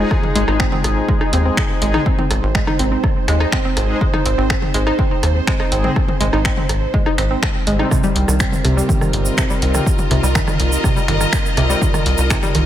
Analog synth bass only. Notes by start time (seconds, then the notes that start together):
0.35 G#1
0.48 G#1
0.84 G#1
1.33 D#2
1.82 G#1
2.31 G#1
2.43 G#1
2.79 G#1
3.28 D#2
3.77 G#1
4.26 G#1
4.38 G#1
4.74 G#1
5.23 D#2
5.72 G#1
6.21 G#1
6.33 G#1
6.69 G#1
7.18 G#1
7.67 G#1
8.16 C2
8.28 C2
8.65 C2
9.13 G1
9.62 C2
10.11 C2
10.23 C2
10.60 C2
11.08 G1
11.57 C2
12.06 C2
12.18 C2
12.55 C2